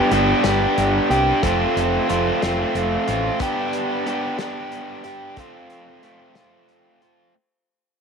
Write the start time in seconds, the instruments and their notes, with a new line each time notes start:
Already playing: overdriven electric guitar B3 D4 G4
0.11 fingered electric bass G1, overdriven electric guitar B3 D4 G4, closed hi-hat
0.44 fingered electric bass G1, overdriven electric guitar B3 D4 G4, snare, closed hi-hat
0.78 fingered electric bass G1, closed hi-hat
1.10 fingered electric bass C2, overdriven electric guitar D4 G4, closed hi-hat
1.43 fingered electric bass F1, overdriven electric guitar A3 C4 F4, kick, closed hi-hat
1.76 fingered electric bass F1, closed hi-hat
2.09 fingered electric bass F1, overdriven electric guitar A3 C4 F4, closed hi-hat
2.42 fingered electric bass F1, overdriven electric guitar A3 C4 F4, snare, closed hi-hat
2.75 fingered electric bass F1, closed hi-hat
3.08 fingered electric bass A1, overdriven electric guitar C4 F4, closed hi-hat
3.40 overdriven electric guitar B3 D4 G4, kick, closed hi-hat
3.73 closed hi-hat
4.06 overdriven electric guitar B3 D4 G4, closed hi-hat
4.38 overdriven electric guitar B3 D4 G4, snare, closed hi-hat
4.72 closed hi-hat
5.04 overdriven electric guitar D4 G4, closed hi-hat
5.37 overdriven electric guitar A3 C4 F4, kick, closed hi-hat
5.70 closed hi-hat
6.03 overdriven electric guitar A3 C4 F4, closed hi-hat
6.35 overdriven electric guitar A3 C4 F4, snare, closed hi-hat
6.69 closed hi-hat
7.02 overdriven electric guitar C4 F4, closed hi-hat